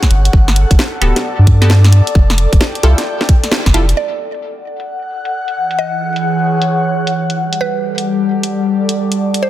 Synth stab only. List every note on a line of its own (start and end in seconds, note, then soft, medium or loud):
1.01 1.58 B3 medium
1.01 1.58 F#4 medium
1.01 1.58 G4 medium
1.01 1.58 A4 medium
1.62 1.72 B3 loud
1.62 1.72 F#4 medium
1.62 1.72 G4 medium
1.62 1.72 A4 loud
2.83 2.99 E4 loud
2.83 2.99 F4 medium
2.83 2.99 G4 medium
2.83 2.99 A4 loud
3.74 3.85 E4 medium
3.74 3.85 F4 medium
3.74 3.85 G4 medium
3.74 3.85 A4 medium